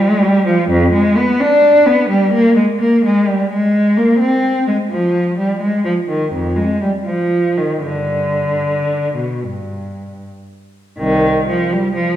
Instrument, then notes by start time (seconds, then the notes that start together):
cello
0.00 G#3
0.22 G3
0.47 F3
0.70 F2
0.93 G#3
1.17 B3
1.40 D4
1.86 B3
2.09 G3
2.34 A#3
2.56 G#3
2.80 A#3
3.05 G#3
3.27 G3
3.51 G#3
3.97 A#3
4.20 C4
4.68 G#3
4.91 F3
5.38 G3
5.61 G#3
5.85 F3
6.08 D#3
6.33 F2
6.56 G#3
6.82 G3
7.05 F3
7.57 D#3
7.84 G2 D3
9.16 B2
9.43 G2
10.98 C2 D#3
11.48 F3
11.73 G3
11.95 F3